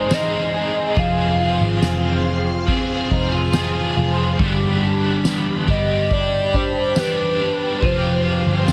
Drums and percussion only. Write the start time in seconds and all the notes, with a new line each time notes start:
0.11 snare, tambourine
0.97 kick, ride
1.82 snare, tambourine
2.68 kick, ride
3.11 kick
3.53 snare, tambourine
4.39 kick, ride
5.25 snare, ride, tambourine
5.68 kick
6.11 kick, ride
6.54 kick
6.96 snare, tambourine
7.82 kick, ride
8.68 snare, ride, tambourine